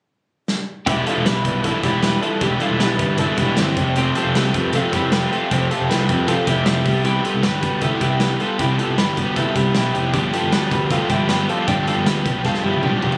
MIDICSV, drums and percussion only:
0, 0, Header, 1, 2, 480
1, 0, Start_track
1, 0, Tempo, 385852
1, 1086, Time_signature, 4, 2, 24, 8
1, 16390, End_track
2, 0, Start_track
2, 0, Title_t, "Drums"
2, 601, Note_on_c, 9, 38, 61
2, 725, Note_off_c, 9, 38, 0
2, 1080, Note_on_c, 9, 42, 90
2, 1083, Note_on_c, 9, 36, 109
2, 1204, Note_off_c, 9, 42, 0
2, 1208, Note_off_c, 9, 36, 0
2, 1323, Note_on_c, 9, 42, 73
2, 1447, Note_off_c, 9, 42, 0
2, 1568, Note_on_c, 9, 38, 97
2, 1570, Note_on_c, 9, 42, 75
2, 1692, Note_off_c, 9, 38, 0
2, 1695, Note_off_c, 9, 42, 0
2, 1803, Note_on_c, 9, 36, 87
2, 1803, Note_on_c, 9, 42, 69
2, 1927, Note_off_c, 9, 36, 0
2, 1927, Note_off_c, 9, 42, 0
2, 2038, Note_on_c, 9, 42, 83
2, 2043, Note_on_c, 9, 36, 73
2, 2162, Note_off_c, 9, 42, 0
2, 2167, Note_off_c, 9, 36, 0
2, 2281, Note_on_c, 9, 38, 35
2, 2282, Note_on_c, 9, 36, 91
2, 2284, Note_on_c, 9, 42, 70
2, 2405, Note_off_c, 9, 38, 0
2, 2407, Note_off_c, 9, 36, 0
2, 2409, Note_off_c, 9, 42, 0
2, 2520, Note_on_c, 9, 38, 100
2, 2527, Note_on_c, 9, 42, 71
2, 2645, Note_off_c, 9, 38, 0
2, 2652, Note_off_c, 9, 42, 0
2, 2768, Note_on_c, 9, 42, 53
2, 2892, Note_off_c, 9, 42, 0
2, 2998, Note_on_c, 9, 42, 86
2, 3001, Note_on_c, 9, 36, 108
2, 3122, Note_off_c, 9, 42, 0
2, 3126, Note_off_c, 9, 36, 0
2, 3235, Note_on_c, 9, 42, 74
2, 3359, Note_off_c, 9, 42, 0
2, 3485, Note_on_c, 9, 38, 96
2, 3487, Note_on_c, 9, 42, 75
2, 3609, Note_off_c, 9, 38, 0
2, 3612, Note_off_c, 9, 42, 0
2, 3722, Note_on_c, 9, 42, 65
2, 3723, Note_on_c, 9, 36, 92
2, 3846, Note_off_c, 9, 42, 0
2, 3847, Note_off_c, 9, 36, 0
2, 3950, Note_on_c, 9, 42, 87
2, 3961, Note_on_c, 9, 36, 80
2, 4074, Note_off_c, 9, 42, 0
2, 4085, Note_off_c, 9, 36, 0
2, 4195, Note_on_c, 9, 42, 63
2, 4201, Note_on_c, 9, 36, 88
2, 4320, Note_off_c, 9, 42, 0
2, 4326, Note_off_c, 9, 36, 0
2, 4437, Note_on_c, 9, 38, 102
2, 4444, Note_on_c, 9, 42, 75
2, 4562, Note_off_c, 9, 38, 0
2, 4569, Note_off_c, 9, 42, 0
2, 4686, Note_on_c, 9, 42, 59
2, 4688, Note_on_c, 9, 36, 91
2, 4810, Note_off_c, 9, 42, 0
2, 4812, Note_off_c, 9, 36, 0
2, 4920, Note_on_c, 9, 42, 83
2, 5044, Note_off_c, 9, 42, 0
2, 5165, Note_on_c, 9, 42, 81
2, 5289, Note_off_c, 9, 42, 0
2, 5415, Note_on_c, 9, 38, 103
2, 5417, Note_on_c, 9, 42, 77
2, 5539, Note_off_c, 9, 38, 0
2, 5542, Note_off_c, 9, 42, 0
2, 5650, Note_on_c, 9, 42, 67
2, 5652, Note_on_c, 9, 36, 94
2, 5775, Note_off_c, 9, 42, 0
2, 5776, Note_off_c, 9, 36, 0
2, 5878, Note_on_c, 9, 42, 90
2, 5889, Note_on_c, 9, 36, 79
2, 6003, Note_off_c, 9, 42, 0
2, 6013, Note_off_c, 9, 36, 0
2, 6128, Note_on_c, 9, 42, 64
2, 6132, Note_on_c, 9, 36, 84
2, 6253, Note_off_c, 9, 42, 0
2, 6256, Note_off_c, 9, 36, 0
2, 6369, Note_on_c, 9, 38, 103
2, 6376, Note_on_c, 9, 42, 76
2, 6493, Note_off_c, 9, 38, 0
2, 6500, Note_off_c, 9, 42, 0
2, 6622, Note_on_c, 9, 42, 54
2, 6746, Note_off_c, 9, 42, 0
2, 6858, Note_on_c, 9, 36, 100
2, 6861, Note_on_c, 9, 42, 89
2, 6983, Note_off_c, 9, 36, 0
2, 6985, Note_off_c, 9, 42, 0
2, 7102, Note_on_c, 9, 42, 77
2, 7226, Note_off_c, 9, 42, 0
2, 7350, Note_on_c, 9, 38, 102
2, 7352, Note_on_c, 9, 42, 79
2, 7474, Note_off_c, 9, 38, 0
2, 7477, Note_off_c, 9, 42, 0
2, 7578, Note_on_c, 9, 36, 91
2, 7583, Note_on_c, 9, 42, 63
2, 7702, Note_off_c, 9, 36, 0
2, 7708, Note_off_c, 9, 42, 0
2, 7809, Note_on_c, 9, 42, 82
2, 7814, Note_on_c, 9, 36, 77
2, 7934, Note_off_c, 9, 42, 0
2, 7938, Note_off_c, 9, 36, 0
2, 8050, Note_on_c, 9, 42, 66
2, 8051, Note_on_c, 9, 36, 85
2, 8175, Note_off_c, 9, 42, 0
2, 8176, Note_off_c, 9, 36, 0
2, 8285, Note_on_c, 9, 38, 102
2, 8292, Note_on_c, 9, 42, 76
2, 8409, Note_off_c, 9, 38, 0
2, 8416, Note_off_c, 9, 42, 0
2, 8530, Note_on_c, 9, 36, 88
2, 8530, Note_on_c, 9, 46, 50
2, 8654, Note_off_c, 9, 36, 0
2, 8654, Note_off_c, 9, 46, 0
2, 8764, Note_on_c, 9, 42, 88
2, 8889, Note_off_c, 9, 42, 0
2, 9014, Note_on_c, 9, 42, 77
2, 9139, Note_off_c, 9, 42, 0
2, 9247, Note_on_c, 9, 38, 104
2, 9250, Note_on_c, 9, 42, 71
2, 9372, Note_off_c, 9, 38, 0
2, 9374, Note_off_c, 9, 42, 0
2, 9486, Note_on_c, 9, 42, 69
2, 9489, Note_on_c, 9, 36, 90
2, 9611, Note_off_c, 9, 42, 0
2, 9613, Note_off_c, 9, 36, 0
2, 9718, Note_on_c, 9, 42, 88
2, 9724, Note_on_c, 9, 36, 81
2, 9843, Note_off_c, 9, 42, 0
2, 9849, Note_off_c, 9, 36, 0
2, 9961, Note_on_c, 9, 42, 69
2, 9966, Note_on_c, 9, 36, 86
2, 10086, Note_off_c, 9, 42, 0
2, 10091, Note_off_c, 9, 36, 0
2, 10201, Note_on_c, 9, 38, 102
2, 10208, Note_on_c, 9, 42, 74
2, 10325, Note_off_c, 9, 38, 0
2, 10332, Note_off_c, 9, 42, 0
2, 10445, Note_on_c, 9, 42, 52
2, 10570, Note_off_c, 9, 42, 0
2, 10690, Note_on_c, 9, 36, 106
2, 10691, Note_on_c, 9, 42, 92
2, 10814, Note_off_c, 9, 36, 0
2, 10815, Note_off_c, 9, 42, 0
2, 10933, Note_on_c, 9, 42, 81
2, 11057, Note_off_c, 9, 42, 0
2, 11173, Note_on_c, 9, 38, 102
2, 11175, Note_on_c, 9, 42, 79
2, 11297, Note_off_c, 9, 38, 0
2, 11300, Note_off_c, 9, 42, 0
2, 11410, Note_on_c, 9, 36, 87
2, 11415, Note_on_c, 9, 42, 63
2, 11535, Note_off_c, 9, 36, 0
2, 11539, Note_off_c, 9, 42, 0
2, 11645, Note_on_c, 9, 42, 82
2, 11648, Note_on_c, 9, 36, 80
2, 11770, Note_off_c, 9, 42, 0
2, 11773, Note_off_c, 9, 36, 0
2, 11889, Note_on_c, 9, 36, 88
2, 11893, Note_on_c, 9, 42, 65
2, 12013, Note_off_c, 9, 36, 0
2, 12018, Note_off_c, 9, 42, 0
2, 12124, Note_on_c, 9, 38, 109
2, 12131, Note_on_c, 9, 42, 75
2, 12248, Note_off_c, 9, 38, 0
2, 12256, Note_off_c, 9, 42, 0
2, 12372, Note_on_c, 9, 42, 59
2, 12497, Note_off_c, 9, 42, 0
2, 12610, Note_on_c, 9, 36, 109
2, 12612, Note_on_c, 9, 42, 88
2, 12734, Note_off_c, 9, 36, 0
2, 12737, Note_off_c, 9, 42, 0
2, 12854, Note_on_c, 9, 42, 82
2, 12978, Note_off_c, 9, 42, 0
2, 13093, Note_on_c, 9, 38, 104
2, 13096, Note_on_c, 9, 42, 74
2, 13218, Note_off_c, 9, 38, 0
2, 13220, Note_off_c, 9, 42, 0
2, 13328, Note_on_c, 9, 36, 91
2, 13331, Note_on_c, 9, 42, 70
2, 13453, Note_off_c, 9, 36, 0
2, 13456, Note_off_c, 9, 42, 0
2, 13563, Note_on_c, 9, 42, 83
2, 13566, Note_on_c, 9, 36, 81
2, 13687, Note_off_c, 9, 42, 0
2, 13691, Note_off_c, 9, 36, 0
2, 13800, Note_on_c, 9, 42, 63
2, 13805, Note_on_c, 9, 36, 83
2, 13924, Note_off_c, 9, 42, 0
2, 13929, Note_off_c, 9, 36, 0
2, 14044, Note_on_c, 9, 38, 95
2, 14051, Note_on_c, 9, 42, 73
2, 14168, Note_off_c, 9, 38, 0
2, 14175, Note_off_c, 9, 42, 0
2, 14293, Note_on_c, 9, 42, 53
2, 14417, Note_off_c, 9, 42, 0
2, 14526, Note_on_c, 9, 42, 80
2, 14528, Note_on_c, 9, 36, 108
2, 14650, Note_off_c, 9, 42, 0
2, 14652, Note_off_c, 9, 36, 0
2, 14770, Note_on_c, 9, 42, 77
2, 14894, Note_off_c, 9, 42, 0
2, 15008, Note_on_c, 9, 38, 97
2, 15011, Note_on_c, 9, 42, 75
2, 15133, Note_off_c, 9, 38, 0
2, 15135, Note_off_c, 9, 42, 0
2, 15247, Note_on_c, 9, 36, 92
2, 15248, Note_on_c, 9, 42, 66
2, 15371, Note_off_c, 9, 36, 0
2, 15373, Note_off_c, 9, 42, 0
2, 15482, Note_on_c, 9, 38, 45
2, 15484, Note_on_c, 9, 36, 80
2, 15605, Note_off_c, 9, 38, 0
2, 15605, Note_on_c, 9, 38, 47
2, 15608, Note_off_c, 9, 36, 0
2, 15730, Note_off_c, 9, 38, 0
2, 15842, Note_on_c, 9, 48, 53
2, 15960, Note_on_c, 9, 47, 72
2, 15966, Note_off_c, 9, 48, 0
2, 16085, Note_off_c, 9, 47, 0
2, 16202, Note_on_c, 9, 43, 76
2, 16324, Note_off_c, 9, 43, 0
2, 16324, Note_on_c, 9, 43, 77
2, 16390, Note_off_c, 9, 43, 0
2, 16390, End_track
0, 0, End_of_file